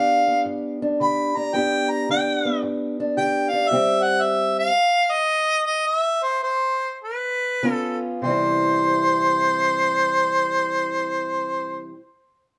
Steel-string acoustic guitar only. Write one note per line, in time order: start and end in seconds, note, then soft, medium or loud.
0.00 0.42 D3 medium
0.00 0.27 B3 medium
0.00 0.81 D4 medium
0.00 1.01 G4 medium
0.28 1.52 B3 medium
0.45 0.96 G2 medium
0.82 1.36 D4 medium
1.00 1.51 D3 medium
1.00 1.56 G4 medium
1.37 1.53 D4 medium
1.53 2.04 G2 medium
1.53 2.44 B3 medium
1.53 2.09 D4 medium
1.53 3.17 G4 medium
2.09 2.59 D3 medium
2.09 2.99 D4 medium
2.45 3.69 B3 medium
2.62 3.13 G2 medium
3.00 3.52 D4 medium
3.17 3.68 D3 medium
3.17 3.73 G4 medium
3.53 3.69 D4 medium
3.71 4.18 C3 medium
3.71 4.69 G3 medium
3.71 4.69 C4 medium
3.71 4.69 G4 medium
7.63 8.19 C#3 medium
7.63 8.20 B3 medium
7.63 8.21 C#4 medium
7.63 8.21 F4 medium
8.22 11.90 C3 medium
8.22 11.92 E3 medium
8.22 11.93 G3 medium
8.27 11.95 C4 medium
8.27 11.98 E4 medium